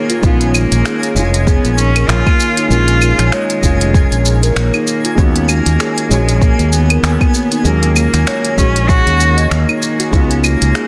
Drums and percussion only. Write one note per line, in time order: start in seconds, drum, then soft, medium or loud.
0.10 closed hi-hat medium
0.10 shaker soft
0.23 kick loud
0.23 shaker soft
0.41 closed hi-hat soft
0.41 shaker soft
0.54 claves medium
0.54 shaker medium
0.72 closed hi-hat medium
0.72 shaker soft
0.85 finger snap loud
0.85 shaker soft
1.03 closed hi-hat soft
1.03 shaker soft
1.16 shaker medium
1.34 closed hi-hat medium
1.34 shaker soft
1.47 kick loud
1.47 shaker soft
1.65 closed hi-hat soft
1.65 shaker soft
1.78 shaker medium
1.96 closed hi-hat medium
1.96 claves medium
1.96 shaker soft
2.09 finger snap loud
2.09 shaker soft
2.26 kick loud
2.26 claves medium
2.26 shaker soft
2.40 shaker medium
2.57 closed hi-hat medium
2.57 shaker soft
2.71 shaker soft
2.88 closed hi-hat soft
2.88 shaker soft
3.02 claves medium
3.02 shaker medium
3.19 finger snap soft
3.19 closed hi-hat medium
3.19 shaker soft
3.32 finger snap loud
3.32 shaker soft
3.50 closed hi-hat soft
3.50 shaker soft
3.63 kick medium
3.63 shaker medium
3.81 closed hi-hat medium
3.81 shaker soft
3.94 kick loud
3.94 shaker soft
4.12 closed hi-hat soft
4.12 shaker soft
4.25 shaker medium
4.43 closed hi-hat medium
4.43 shaker soft
4.56 finger snap medium
4.56 shaker soft
4.74 claves medium
4.74 shaker soft
4.87 shaker medium
5.05 closed hi-hat medium
5.05 shaker soft
5.18 kick loud
5.18 shaker soft
5.36 closed hi-hat soft
5.36 shaker soft
5.49 claves medium
5.49 shaker medium
5.66 closed hi-hat medium
5.66 shaker soft
5.80 finger snap loud
5.80 shaker soft
5.98 closed hi-hat soft
5.98 shaker soft
6.11 shaker medium
6.29 closed hi-hat medium
6.29 shaker soft
6.42 kick loud
6.42 shaker soft
6.59 closed hi-hat soft
6.59 shaker soft
6.72 shaker medium
6.90 closed hi-hat medium
6.90 claves medium
6.90 shaker soft
7.04 finger snap loud
7.04 shaker soft
7.21 kick loud
7.21 claves medium
7.21 shaker soft
7.34 shaker medium
7.52 closed hi-hat medium
7.52 shaker soft
7.65 shaker soft
7.83 closed hi-hat soft
7.83 shaker soft
7.96 claves medium
7.96 shaker medium
8.14 finger snap soft
8.14 closed hi-hat medium
8.14 shaker soft
8.27 finger snap loud
8.27 shaker soft
8.45 closed hi-hat soft
8.45 shaker soft
8.58 kick medium
8.58 shaker medium
8.76 closed hi-hat medium
8.76 shaker soft
8.89 kick loud
8.89 shaker soft
9.07 closed hi-hat soft
9.07 shaker soft
9.20 shaker medium
9.38 closed hi-hat medium
9.38 shaker soft
9.51 finger snap loud
9.51 shaker soft
9.69 claves medium
9.69 shaker soft
9.82 shaker medium
10.00 closed hi-hat medium
10.00 shaker soft
10.13 kick loud
10.13 shaker soft
10.31 closed hi-hat soft
10.31 shaker soft
10.44 claves medium
10.44 shaker medium
10.62 closed hi-hat medium
10.62 shaker soft
10.75 finger snap loud
10.75 shaker soft